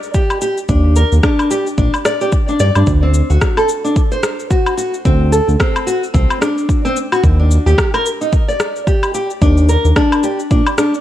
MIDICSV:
0, 0, Header, 1, 4, 480
1, 0, Start_track
1, 0, Tempo, 545455
1, 608, Time_signature, 4, 2, 24, 8
1, 9686, End_track
2, 0, Start_track
2, 0, Title_t, "Nylon-string guitar"
2, 0, Program_c, 0, 24
2, 0, Note_on_c, 0, 74, 71
2, 118, Note_off_c, 0, 74, 0
2, 127, Note_on_c, 0, 67, 78
2, 355, Note_off_c, 0, 67, 0
2, 366, Note_on_c, 0, 67, 72
2, 499, Note_off_c, 0, 67, 0
2, 605, Note_on_c, 0, 62, 94
2, 837, Note_off_c, 0, 62, 0
2, 846, Note_on_c, 0, 70, 74
2, 979, Note_off_c, 0, 70, 0
2, 1084, Note_on_c, 0, 62, 95
2, 1316, Note_off_c, 0, 62, 0
2, 1327, Note_on_c, 0, 67, 75
2, 1460, Note_off_c, 0, 67, 0
2, 1567, Note_on_c, 0, 62, 92
2, 1693, Note_off_c, 0, 62, 0
2, 1808, Note_on_c, 0, 74, 87
2, 1933, Note_off_c, 0, 74, 0
2, 1947, Note_on_c, 0, 67, 97
2, 2038, Note_off_c, 0, 67, 0
2, 2188, Note_on_c, 0, 62, 93
2, 2278, Note_off_c, 0, 62, 0
2, 2288, Note_on_c, 0, 74, 101
2, 2413, Note_off_c, 0, 74, 0
2, 2428, Note_on_c, 0, 62, 76
2, 2523, Note_off_c, 0, 62, 0
2, 2664, Note_on_c, 0, 60, 73
2, 2892, Note_off_c, 0, 60, 0
2, 2903, Note_on_c, 0, 66, 75
2, 3131, Note_off_c, 0, 66, 0
2, 3144, Note_on_c, 0, 69, 95
2, 3241, Note_off_c, 0, 69, 0
2, 3383, Note_on_c, 0, 62, 74
2, 3481, Note_off_c, 0, 62, 0
2, 3623, Note_on_c, 0, 72, 73
2, 3956, Note_off_c, 0, 72, 0
2, 3964, Note_on_c, 0, 66, 72
2, 4191, Note_off_c, 0, 66, 0
2, 4201, Note_on_c, 0, 66, 72
2, 4337, Note_off_c, 0, 66, 0
2, 4445, Note_on_c, 0, 60, 99
2, 4676, Note_off_c, 0, 60, 0
2, 4684, Note_on_c, 0, 69, 71
2, 4818, Note_off_c, 0, 69, 0
2, 4924, Note_on_c, 0, 60, 98
2, 5156, Note_off_c, 0, 60, 0
2, 5163, Note_on_c, 0, 66, 77
2, 5298, Note_off_c, 0, 66, 0
2, 5401, Note_on_c, 0, 60, 96
2, 5634, Note_off_c, 0, 60, 0
2, 5643, Note_on_c, 0, 62, 70
2, 6011, Note_off_c, 0, 62, 0
2, 6027, Note_on_c, 0, 60, 98
2, 6123, Note_off_c, 0, 60, 0
2, 6268, Note_on_c, 0, 66, 76
2, 6363, Note_off_c, 0, 66, 0
2, 6507, Note_on_c, 0, 62, 69
2, 6733, Note_off_c, 0, 62, 0
2, 6744, Note_on_c, 0, 67, 71
2, 6972, Note_off_c, 0, 67, 0
2, 6986, Note_on_c, 0, 70, 98
2, 7082, Note_off_c, 0, 70, 0
2, 7226, Note_on_c, 0, 63, 75
2, 7322, Note_off_c, 0, 63, 0
2, 7466, Note_on_c, 0, 74, 68
2, 7797, Note_off_c, 0, 74, 0
2, 7807, Note_on_c, 0, 67, 73
2, 8038, Note_off_c, 0, 67, 0
2, 8047, Note_on_c, 0, 67, 74
2, 8180, Note_off_c, 0, 67, 0
2, 8287, Note_on_c, 0, 62, 97
2, 8517, Note_off_c, 0, 62, 0
2, 8528, Note_on_c, 0, 70, 73
2, 8661, Note_off_c, 0, 70, 0
2, 8768, Note_on_c, 0, 62, 103
2, 8998, Note_off_c, 0, 62, 0
2, 9007, Note_on_c, 0, 67, 77
2, 9140, Note_off_c, 0, 67, 0
2, 9247, Note_on_c, 0, 62, 95
2, 9373, Note_off_c, 0, 62, 0
2, 9488, Note_on_c, 0, 62, 72
2, 9620, Note_off_c, 0, 62, 0
2, 9686, End_track
3, 0, Start_track
3, 0, Title_t, "Analog synth bass"
3, 0, Program_c, 1, 38
3, 606, Note_on_c, 1, 39, 99
3, 914, Note_off_c, 1, 39, 0
3, 987, Note_on_c, 1, 39, 85
3, 1055, Note_off_c, 1, 39, 0
3, 1564, Note_on_c, 1, 34, 98
3, 1661, Note_off_c, 1, 34, 0
3, 2285, Note_on_c, 1, 43, 87
3, 2381, Note_off_c, 1, 43, 0
3, 2426, Note_on_c, 1, 43, 83
3, 2495, Note_off_c, 1, 43, 0
3, 2525, Note_on_c, 1, 38, 91
3, 2834, Note_off_c, 1, 38, 0
3, 2905, Note_on_c, 1, 38, 83
3, 2974, Note_off_c, 1, 38, 0
3, 4447, Note_on_c, 1, 38, 92
3, 4755, Note_off_c, 1, 38, 0
3, 4822, Note_on_c, 1, 38, 86
3, 4893, Note_off_c, 1, 38, 0
3, 5404, Note_on_c, 1, 36, 94
3, 5500, Note_off_c, 1, 36, 0
3, 6366, Note_on_c, 1, 39, 103
3, 6674, Note_off_c, 1, 39, 0
3, 6741, Note_on_c, 1, 39, 86
3, 6812, Note_off_c, 1, 39, 0
3, 8285, Note_on_c, 1, 39, 106
3, 8594, Note_off_c, 1, 39, 0
3, 8664, Note_on_c, 1, 39, 82
3, 8734, Note_off_c, 1, 39, 0
3, 9246, Note_on_c, 1, 34, 98
3, 9341, Note_off_c, 1, 34, 0
3, 9686, End_track
4, 0, Start_track
4, 0, Title_t, "Drums"
4, 25, Note_on_c, 9, 69, 31
4, 113, Note_off_c, 9, 69, 0
4, 124, Note_on_c, 9, 69, 50
4, 126, Note_on_c, 9, 36, 104
4, 212, Note_off_c, 9, 69, 0
4, 214, Note_off_c, 9, 36, 0
4, 265, Note_on_c, 9, 77, 65
4, 266, Note_on_c, 9, 69, 30
4, 353, Note_off_c, 9, 77, 0
4, 354, Note_off_c, 9, 69, 0
4, 365, Note_on_c, 9, 69, 77
4, 453, Note_off_c, 9, 69, 0
4, 506, Note_on_c, 9, 69, 34
4, 594, Note_off_c, 9, 69, 0
4, 604, Note_on_c, 9, 69, 42
4, 606, Note_on_c, 9, 36, 97
4, 692, Note_off_c, 9, 69, 0
4, 694, Note_off_c, 9, 36, 0
4, 843, Note_on_c, 9, 69, 78
4, 931, Note_off_c, 9, 69, 0
4, 985, Note_on_c, 9, 69, 32
4, 1073, Note_off_c, 9, 69, 0
4, 1085, Note_on_c, 9, 36, 106
4, 1085, Note_on_c, 9, 37, 71
4, 1086, Note_on_c, 9, 69, 42
4, 1173, Note_off_c, 9, 36, 0
4, 1173, Note_off_c, 9, 37, 0
4, 1174, Note_off_c, 9, 69, 0
4, 1225, Note_on_c, 9, 69, 28
4, 1225, Note_on_c, 9, 77, 65
4, 1313, Note_off_c, 9, 69, 0
4, 1313, Note_off_c, 9, 77, 0
4, 1327, Note_on_c, 9, 69, 76
4, 1415, Note_off_c, 9, 69, 0
4, 1466, Note_on_c, 9, 69, 32
4, 1554, Note_off_c, 9, 69, 0
4, 1565, Note_on_c, 9, 36, 100
4, 1567, Note_on_c, 9, 69, 41
4, 1653, Note_off_c, 9, 36, 0
4, 1655, Note_off_c, 9, 69, 0
4, 1705, Note_on_c, 9, 77, 72
4, 1706, Note_on_c, 9, 69, 32
4, 1793, Note_off_c, 9, 77, 0
4, 1794, Note_off_c, 9, 69, 0
4, 1806, Note_on_c, 9, 37, 75
4, 1806, Note_on_c, 9, 69, 82
4, 1894, Note_off_c, 9, 37, 0
4, 1894, Note_off_c, 9, 69, 0
4, 1945, Note_on_c, 9, 69, 33
4, 2033, Note_off_c, 9, 69, 0
4, 2044, Note_on_c, 9, 69, 45
4, 2045, Note_on_c, 9, 36, 111
4, 2132, Note_off_c, 9, 69, 0
4, 2133, Note_off_c, 9, 36, 0
4, 2184, Note_on_c, 9, 69, 28
4, 2272, Note_off_c, 9, 69, 0
4, 2284, Note_on_c, 9, 69, 75
4, 2372, Note_off_c, 9, 69, 0
4, 2424, Note_on_c, 9, 69, 32
4, 2424, Note_on_c, 9, 77, 55
4, 2512, Note_off_c, 9, 69, 0
4, 2512, Note_off_c, 9, 77, 0
4, 2522, Note_on_c, 9, 69, 40
4, 2526, Note_on_c, 9, 36, 96
4, 2610, Note_off_c, 9, 69, 0
4, 2614, Note_off_c, 9, 36, 0
4, 2764, Note_on_c, 9, 69, 79
4, 2852, Note_off_c, 9, 69, 0
4, 2905, Note_on_c, 9, 69, 31
4, 2993, Note_off_c, 9, 69, 0
4, 3005, Note_on_c, 9, 37, 66
4, 3005, Note_on_c, 9, 69, 44
4, 3006, Note_on_c, 9, 36, 101
4, 3093, Note_off_c, 9, 37, 0
4, 3093, Note_off_c, 9, 69, 0
4, 3094, Note_off_c, 9, 36, 0
4, 3144, Note_on_c, 9, 69, 28
4, 3144, Note_on_c, 9, 77, 72
4, 3232, Note_off_c, 9, 69, 0
4, 3232, Note_off_c, 9, 77, 0
4, 3244, Note_on_c, 9, 69, 68
4, 3332, Note_off_c, 9, 69, 0
4, 3387, Note_on_c, 9, 69, 32
4, 3475, Note_off_c, 9, 69, 0
4, 3486, Note_on_c, 9, 36, 102
4, 3486, Note_on_c, 9, 69, 40
4, 3574, Note_off_c, 9, 36, 0
4, 3574, Note_off_c, 9, 69, 0
4, 3624, Note_on_c, 9, 69, 30
4, 3712, Note_off_c, 9, 69, 0
4, 3725, Note_on_c, 9, 37, 74
4, 3725, Note_on_c, 9, 69, 79
4, 3813, Note_off_c, 9, 37, 0
4, 3813, Note_off_c, 9, 69, 0
4, 3868, Note_on_c, 9, 69, 31
4, 3956, Note_off_c, 9, 69, 0
4, 3966, Note_on_c, 9, 36, 100
4, 3966, Note_on_c, 9, 69, 45
4, 4054, Note_off_c, 9, 36, 0
4, 4054, Note_off_c, 9, 69, 0
4, 4105, Note_on_c, 9, 69, 27
4, 4105, Note_on_c, 9, 77, 70
4, 4193, Note_off_c, 9, 69, 0
4, 4193, Note_off_c, 9, 77, 0
4, 4207, Note_on_c, 9, 69, 75
4, 4295, Note_off_c, 9, 69, 0
4, 4347, Note_on_c, 9, 69, 32
4, 4435, Note_off_c, 9, 69, 0
4, 4446, Note_on_c, 9, 36, 97
4, 4448, Note_on_c, 9, 69, 41
4, 4534, Note_off_c, 9, 36, 0
4, 4536, Note_off_c, 9, 69, 0
4, 4688, Note_on_c, 9, 69, 73
4, 4776, Note_off_c, 9, 69, 0
4, 4828, Note_on_c, 9, 69, 30
4, 4916, Note_off_c, 9, 69, 0
4, 4926, Note_on_c, 9, 36, 100
4, 4929, Note_on_c, 9, 37, 66
4, 4929, Note_on_c, 9, 69, 40
4, 5014, Note_off_c, 9, 36, 0
4, 5017, Note_off_c, 9, 37, 0
4, 5017, Note_off_c, 9, 69, 0
4, 5068, Note_on_c, 9, 69, 28
4, 5068, Note_on_c, 9, 77, 76
4, 5156, Note_off_c, 9, 69, 0
4, 5156, Note_off_c, 9, 77, 0
4, 5169, Note_on_c, 9, 69, 66
4, 5257, Note_off_c, 9, 69, 0
4, 5310, Note_on_c, 9, 69, 31
4, 5398, Note_off_c, 9, 69, 0
4, 5406, Note_on_c, 9, 36, 101
4, 5409, Note_on_c, 9, 69, 41
4, 5494, Note_off_c, 9, 36, 0
4, 5497, Note_off_c, 9, 69, 0
4, 5548, Note_on_c, 9, 69, 27
4, 5548, Note_on_c, 9, 77, 77
4, 5636, Note_off_c, 9, 69, 0
4, 5636, Note_off_c, 9, 77, 0
4, 5649, Note_on_c, 9, 37, 71
4, 5649, Note_on_c, 9, 69, 69
4, 5737, Note_off_c, 9, 37, 0
4, 5737, Note_off_c, 9, 69, 0
4, 5789, Note_on_c, 9, 69, 30
4, 5877, Note_off_c, 9, 69, 0
4, 5887, Note_on_c, 9, 36, 101
4, 5889, Note_on_c, 9, 69, 44
4, 5975, Note_off_c, 9, 36, 0
4, 5977, Note_off_c, 9, 69, 0
4, 6031, Note_on_c, 9, 69, 29
4, 6119, Note_off_c, 9, 69, 0
4, 6128, Note_on_c, 9, 69, 71
4, 6216, Note_off_c, 9, 69, 0
4, 6268, Note_on_c, 9, 69, 30
4, 6268, Note_on_c, 9, 77, 57
4, 6356, Note_off_c, 9, 69, 0
4, 6356, Note_off_c, 9, 77, 0
4, 6367, Note_on_c, 9, 36, 97
4, 6370, Note_on_c, 9, 69, 42
4, 6455, Note_off_c, 9, 36, 0
4, 6458, Note_off_c, 9, 69, 0
4, 6609, Note_on_c, 9, 69, 73
4, 6697, Note_off_c, 9, 69, 0
4, 6749, Note_on_c, 9, 69, 32
4, 6837, Note_off_c, 9, 69, 0
4, 6846, Note_on_c, 9, 36, 94
4, 6850, Note_on_c, 9, 37, 74
4, 6850, Note_on_c, 9, 69, 39
4, 6934, Note_off_c, 9, 36, 0
4, 6938, Note_off_c, 9, 37, 0
4, 6938, Note_off_c, 9, 69, 0
4, 6989, Note_on_c, 9, 69, 28
4, 6989, Note_on_c, 9, 77, 77
4, 7077, Note_off_c, 9, 69, 0
4, 7077, Note_off_c, 9, 77, 0
4, 7091, Note_on_c, 9, 69, 68
4, 7179, Note_off_c, 9, 69, 0
4, 7228, Note_on_c, 9, 69, 32
4, 7316, Note_off_c, 9, 69, 0
4, 7327, Note_on_c, 9, 36, 105
4, 7328, Note_on_c, 9, 69, 40
4, 7415, Note_off_c, 9, 36, 0
4, 7416, Note_off_c, 9, 69, 0
4, 7469, Note_on_c, 9, 69, 29
4, 7557, Note_off_c, 9, 69, 0
4, 7567, Note_on_c, 9, 37, 77
4, 7567, Note_on_c, 9, 69, 67
4, 7655, Note_off_c, 9, 37, 0
4, 7655, Note_off_c, 9, 69, 0
4, 7708, Note_on_c, 9, 69, 29
4, 7796, Note_off_c, 9, 69, 0
4, 7806, Note_on_c, 9, 36, 107
4, 7809, Note_on_c, 9, 69, 43
4, 7894, Note_off_c, 9, 36, 0
4, 7897, Note_off_c, 9, 69, 0
4, 7946, Note_on_c, 9, 69, 26
4, 7946, Note_on_c, 9, 77, 72
4, 8034, Note_off_c, 9, 69, 0
4, 8034, Note_off_c, 9, 77, 0
4, 8047, Note_on_c, 9, 69, 70
4, 8135, Note_off_c, 9, 69, 0
4, 8187, Note_on_c, 9, 69, 31
4, 8275, Note_off_c, 9, 69, 0
4, 8286, Note_on_c, 9, 36, 102
4, 8288, Note_on_c, 9, 69, 39
4, 8374, Note_off_c, 9, 36, 0
4, 8376, Note_off_c, 9, 69, 0
4, 8425, Note_on_c, 9, 69, 29
4, 8513, Note_off_c, 9, 69, 0
4, 8526, Note_on_c, 9, 69, 75
4, 8614, Note_off_c, 9, 69, 0
4, 8667, Note_on_c, 9, 69, 31
4, 8755, Note_off_c, 9, 69, 0
4, 8766, Note_on_c, 9, 36, 96
4, 8766, Note_on_c, 9, 37, 72
4, 8767, Note_on_c, 9, 69, 40
4, 8854, Note_off_c, 9, 36, 0
4, 8854, Note_off_c, 9, 37, 0
4, 8855, Note_off_c, 9, 69, 0
4, 8908, Note_on_c, 9, 69, 28
4, 8908, Note_on_c, 9, 77, 79
4, 8996, Note_off_c, 9, 69, 0
4, 8996, Note_off_c, 9, 77, 0
4, 9006, Note_on_c, 9, 69, 67
4, 9094, Note_off_c, 9, 69, 0
4, 9148, Note_on_c, 9, 69, 32
4, 9236, Note_off_c, 9, 69, 0
4, 9247, Note_on_c, 9, 36, 103
4, 9249, Note_on_c, 9, 69, 40
4, 9335, Note_off_c, 9, 36, 0
4, 9337, Note_off_c, 9, 69, 0
4, 9386, Note_on_c, 9, 69, 31
4, 9386, Note_on_c, 9, 77, 83
4, 9474, Note_off_c, 9, 69, 0
4, 9474, Note_off_c, 9, 77, 0
4, 9487, Note_on_c, 9, 37, 73
4, 9487, Note_on_c, 9, 69, 71
4, 9575, Note_off_c, 9, 37, 0
4, 9575, Note_off_c, 9, 69, 0
4, 9629, Note_on_c, 9, 69, 30
4, 9686, Note_off_c, 9, 69, 0
4, 9686, End_track
0, 0, End_of_file